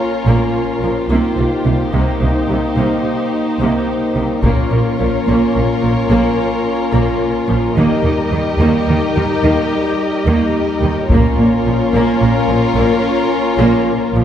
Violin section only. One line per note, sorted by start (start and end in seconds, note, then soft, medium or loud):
0.00 1.06 A#4 soft
0.00 1.06 C#5 soft
1.07 4.38 G4 soft
1.07 4.37 C5 soft
4.41 7.75 A#4 soft
4.41 7.75 C#5 soft
7.76 11.05 A#4 soft
7.76 11.06 D#5 soft
11.08 14.24 A#4 medium
11.08 14.24 C#5 medium